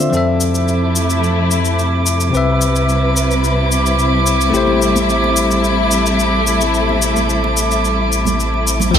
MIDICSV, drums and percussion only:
0, 0, Header, 1, 2, 480
1, 0, Start_track
1, 0, Key_signature, 0, "minor"
1, 0, Tempo, 550459
1, 116, Time_signature, 4, 2, 24, 8
1, 7838, End_track
2, 0, Start_track
2, 0, Title_t, "Drums"
2, 0, Note_on_c, 9, 62, 48
2, 0, Note_on_c, 9, 82, 45
2, 85, Note_off_c, 9, 62, 0
2, 88, Note_off_c, 9, 82, 0
2, 115, Note_on_c, 9, 82, 28
2, 202, Note_off_c, 9, 82, 0
2, 353, Note_on_c, 9, 82, 62
2, 440, Note_off_c, 9, 82, 0
2, 477, Note_on_c, 9, 82, 37
2, 564, Note_off_c, 9, 82, 0
2, 594, Note_on_c, 9, 82, 29
2, 681, Note_off_c, 9, 82, 0
2, 834, Note_on_c, 9, 82, 68
2, 921, Note_off_c, 9, 82, 0
2, 958, Note_on_c, 9, 82, 37
2, 1046, Note_off_c, 9, 82, 0
2, 1079, Note_on_c, 9, 82, 25
2, 1166, Note_off_c, 9, 82, 0
2, 1316, Note_on_c, 9, 82, 72
2, 1404, Note_off_c, 9, 82, 0
2, 1439, Note_on_c, 9, 82, 39
2, 1526, Note_off_c, 9, 82, 0
2, 1560, Note_on_c, 9, 82, 27
2, 1648, Note_off_c, 9, 82, 0
2, 1798, Note_on_c, 9, 82, 66
2, 1886, Note_off_c, 9, 82, 0
2, 1922, Note_on_c, 9, 82, 39
2, 2009, Note_off_c, 9, 82, 0
2, 2043, Note_on_c, 9, 82, 29
2, 2131, Note_off_c, 9, 82, 0
2, 2279, Note_on_c, 9, 82, 65
2, 2367, Note_off_c, 9, 82, 0
2, 2404, Note_on_c, 9, 82, 39
2, 2491, Note_off_c, 9, 82, 0
2, 2521, Note_on_c, 9, 82, 29
2, 2608, Note_off_c, 9, 82, 0
2, 2760, Note_on_c, 9, 82, 67
2, 2847, Note_off_c, 9, 82, 0
2, 2886, Note_on_c, 9, 82, 34
2, 2973, Note_off_c, 9, 82, 0
2, 3001, Note_on_c, 9, 82, 29
2, 3088, Note_off_c, 9, 82, 0
2, 3240, Note_on_c, 9, 82, 70
2, 3328, Note_off_c, 9, 82, 0
2, 3366, Note_on_c, 9, 82, 38
2, 3454, Note_off_c, 9, 82, 0
2, 3480, Note_on_c, 9, 82, 29
2, 3567, Note_off_c, 9, 82, 0
2, 3718, Note_on_c, 9, 82, 68
2, 3805, Note_off_c, 9, 82, 0
2, 3845, Note_on_c, 9, 82, 42
2, 3932, Note_off_c, 9, 82, 0
2, 3960, Note_on_c, 9, 82, 31
2, 4048, Note_off_c, 9, 82, 0
2, 4074, Note_on_c, 9, 63, 54
2, 4162, Note_off_c, 9, 63, 0
2, 4201, Note_on_c, 9, 82, 68
2, 4288, Note_off_c, 9, 82, 0
2, 4323, Note_on_c, 9, 63, 58
2, 4324, Note_on_c, 9, 62, 49
2, 4328, Note_on_c, 9, 82, 42
2, 4410, Note_off_c, 9, 63, 0
2, 4411, Note_off_c, 9, 62, 0
2, 4415, Note_off_c, 9, 82, 0
2, 4443, Note_on_c, 9, 82, 30
2, 4530, Note_off_c, 9, 82, 0
2, 4569, Note_on_c, 9, 62, 48
2, 4656, Note_off_c, 9, 62, 0
2, 4678, Note_on_c, 9, 82, 73
2, 4765, Note_off_c, 9, 82, 0
2, 4804, Note_on_c, 9, 82, 38
2, 4892, Note_off_c, 9, 82, 0
2, 4920, Note_on_c, 9, 82, 29
2, 5007, Note_off_c, 9, 82, 0
2, 5156, Note_on_c, 9, 82, 74
2, 5243, Note_off_c, 9, 82, 0
2, 5286, Note_on_c, 9, 82, 41
2, 5373, Note_off_c, 9, 82, 0
2, 5398, Note_on_c, 9, 62, 32
2, 5401, Note_on_c, 9, 82, 31
2, 5485, Note_off_c, 9, 62, 0
2, 5488, Note_off_c, 9, 82, 0
2, 5639, Note_on_c, 9, 82, 74
2, 5727, Note_off_c, 9, 82, 0
2, 5763, Note_on_c, 9, 62, 42
2, 5764, Note_on_c, 9, 82, 42
2, 5850, Note_off_c, 9, 62, 0
2, 5851, Note_off_c, 9, 82, 0
2, 5879, Note_on_c, 9, 82, 29
2, 5966, Note_off_c, 9, 82, 0
2, 6009, Note_on_c, 9, 63, 57
2, 6097, Note_off_c, 9, 63, 0
2, 6121, Note_on_c, 9, 82, 68
2, 6209, Note_off_c, 9, 82, 0
2, 6246, Note_on_c, 9, 82, 37
2, 6248, Note_on_c, 9, 62, 51
2, 6248, Note_on_c, 9, 63, 56
2, 6333, Note_off_c, 9, 82, 0
2, 6335, Note_off_c, 9, 62, 0
2, 6335, Note_off_c, 9, 63, 0
2, 6362, Note_on_c, 9, 82, 31
2, 6449, Note_off_c, 9, 82, 0
2, 6487, Note_on_c, 9, 62, 51
2, 6575, Note_off_c, 9, 62, 0
2, 6600, Note_on_c, 9, 82, 72
2, 6688, Note_off_c, 9, 82, 0
2, 6725, Note_on_c, 9, 82, 38
2, 6812, Note_off_c, 9, 82, 0
2, 6843, Note_on_c, 9, 82, 30
2, 6930, Note_off_c, 9, 82, 0
2, 7082, Note_on_c, 9, 82, 73
2, 7170, Note_off_c, 9, 82, 0
2, 7198, Note_on_c, 9, 63, 66
2, 7206, Note_on_c, 9, 64, 78
2, 7210, Note_on_c, 9, 82, 44
2, 7285, Note_off_c, 9, 63, 0
2, 7293, Note_off_c, 9, 64, 0
2, 7297, Note_off_c, 9, 82, 0
2, 7325, Note_on_c, 9, 82, 29
2, 7412, Note_off_c, 9, 82, 0
2, 7445, Note_on_c, 9, 62, 27
2, 7533, Note_off_c, 9, 62, 0
2, 7563, Note_on_c, 9, 82, 77
2, 7650, Note_off_c, 9, 82, 0
2, 7672, Note_on_c, 9, 64, 67
2, 7678, Note_on_c, 9, 62, 45
2, 7687, Note_on_c, 9, 82, 43
2, 7759, Note_off_c, 9, 64, 0
2, 7765, Note_off_c, 9, 62, 0
2, 7774, Note_off_c, 9, 82, 0
2, 7799, Note_on_c, 9, 36, 102
2, 7800, Note_on_c, 9, 82, 31
2, 7838, Note_off_c, 9, 36, 0
2, 7838, Note_off_c, 9, 82, 0
2, 7838, End_track
0, 0, End_of_file